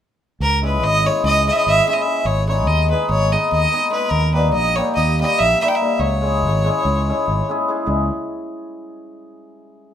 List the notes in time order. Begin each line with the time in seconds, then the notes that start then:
0.40 C#2 A#4
0.62 G#3 C#4 E4 G#4 B4
0.83 G#1 D#5
1.04 G#3 C#4 E4 G#4 C#5
1.24 C#2 D#5
1.47 G#3 C#4 E4 G#4 D#5
1.51 E5
1.57 D#5
1.67 G#1 E5
1.87 G#3 C#4 E4 G#4 E5
1.93 D#5
2.01 G#3 E5
2.06 C#4 E4 G#4
2.25 G#1 C#5
2.48 G#3 B3 D#4 G#4 C#5
2.67 D#2 D#5
2.90 G#3 B3 D#4 G#4 B4
3.09 G#1 C#5
3.32 G#3 B3 D#4 G#4 D#5
3.52 D#2 D#5
3.72 G#3 B3 D#4 G#4
3.90 G#3 B3 D#4 G#4 B4
4.11 D#2 A#4
4.33 G3 A#3 D#4 G4 B4
4.53 A#1 D#5
4.75 G3 A#3 D#4 G4 C#5
4.95 D#2 D#5
5.20 G3 A#3 D#4 G4 D#5
5.38 A#1 E5
5.61 G3 A#3 D#4 G4 E5
5.68 G5
5.75 E5
5.80 G3 A#3 D#4 G4
5.99 C#2 C#5
6.22 G#3 C#4 E4 G#4
6.43 G#1
6.64 G#3 C#4 E4 G#4
6.85 C#2
7.09 G#3 C#4 E4 G#4
7.28 G#1
7.49 G#3 C#4 E4 G#4
7.68 G#3 C#4 E4 G#4
7.86 C#2 G#3 C#4 E4 G#4